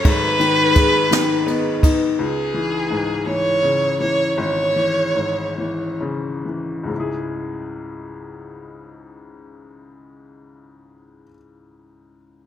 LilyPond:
<<
  \new Staff \with { instrumentName = "Violin" } { \time 6/8 \key cis \minor \tempo 4. = 48 b'2~ b'8 r8 | gis'4. cis''4 cis''8 | cis''2 r4 | r2. |
r2. | }
  \new Staff \with { instrumentName = "Glass harmonica" } { \time 6/8 \key cis \minor <dis' gis' b'>2. | r2. | r2. | r2. |
r2. | }
  \new Staff \with { instrumentName = "French horn section" } { \time 6/8 \key cis \minor r4 gis'8 dis'4. | r2. | r2. | r2. |
r2. | }
  \new Staff \with { instrumentName = "Upright piano" } { \clef bass \time 6/8 \key cis \minor <gis,, gis,>8 dis8 gis8 dis8 b8 dis'8 | cis,8 e8 gis,8 e8 cis8 e8 | gis,,8 e8 gis,8 e8 cis8 e8 | <cis, gis, cis gis e' gis'>2.~ |
<cis, gis, cis gis e' gis'>2. | }
  \new DrumStaff \with { instrumentName = "Drums" } \drummode { \time 6/8 <bd cymr>8 cymr8 <bd cymr sn>8 <cymr sn>8 cymr8 <bd cymr>8 | r4. r4. | r4. r4. | r4. r4. |
r4. r4. | }
>>